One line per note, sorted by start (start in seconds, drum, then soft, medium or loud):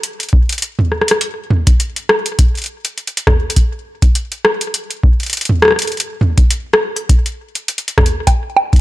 0.03 closed hi-hat medium
0.20 closed hi-hat soft
0.23 closed hi-hat soft
0.29 closed hi-hat soft
0.33 kick loud
0.49 closed hi-hat soft
0.52 closed hi-hat soft
0.58 closed hi-hat soft
0.62 closed hi-hat medium
0.79 mid tom medium
0.92 cross-stick medium
1.01 cross-stick medium
1.08 cross-stick medium
1.08 closed hi-hat medium
1.21 closed hi-hat medium
1.50 mid tom medium
1.67 kick loud
1.67 closed hi-hat medium
1.80 closed hi-hat medium
1.96 closed hi-hat soft
2.09 cross-stick loud
2.26 closed hi-hat medium
2.39 kick loud
2.39 closed hi-hat medium
2.55 closed hi-hat soft
2.57 closed hi-hat soft
2.62 closed hi-hat soft
2.64 closed hi-hat soft
2.66 closed hi-hat soft
2.85 closed hi-hat medium
2.98 closed hi-hat soft
3.07 closed hi-hat soft
3.17 closed hi-hat medium
3.27 kick loud
3.27 cross-stick loud
3.27 mid tom medium
3.50 closed hi-hat medium
3.56 kick medium
3.56 closed hi-hat medium
4.02 kick loud
4.02 closed hi-hat medium
4.15 closed hi-hat medium
4.32 closed hi-hat soft
4.45 cross-stick loud
4.61 closed hi-hat medium
4.74 closed hi-hat medium
4.91 closed hi-hat soft
5.04 kick loud
5.20 closed hi-hat soft
5.23 closed hi-hat soft
5.26 closed hi-hat soft
5.30 closed hi-hat soft
5.33 closed hi-hat medium
5.37 closed hi-hat soft
5.41 closed hi-hat soft
5.45 closed hi-hat soft
5.49 mid tom medium
5.62 cross-stick loud
5.65 cross-stick medium
5.68 cross-stick medium
5.71 cross-stick medium
5.72 cross-stick medium
5.76 cross-stick soft
5.76 closed hi-hat medium
5.82 closed hi-hat soft
5.87 closed hi-hat soft
5.92 closed hi-hat soft
5.97 closed hi-hat soft
6.00 closed hi-hat medium
6.02 closed hi-hat soft
6.21 mid tom medium
6.38 kick loud
6.38 closed hi-hat soft
6.51 closed hi-hat medium
6.73 cross-stick loud
6.96 closed hi-hat medium
7.09 kick loud
7.09 closed hi-hat medium
7.26 closed hi-hat soft
7.55 closed hi-hat soft
7.68 closed hi-hat medium
7.78 closed hi-hat soft
7.88 closed hi-hat soft
7.98 kick loud
7.98 cross-stick loud
7.98 mid tom medium
8.06 closed hi-hat medium
8.27 kick medium
8.27 closed hi-hat medium
8.27 high bongo soft
8.56 high bongo medium
8.73 kick loud
8.73 closed hi-hat soft
8.76 closed hi-hat soft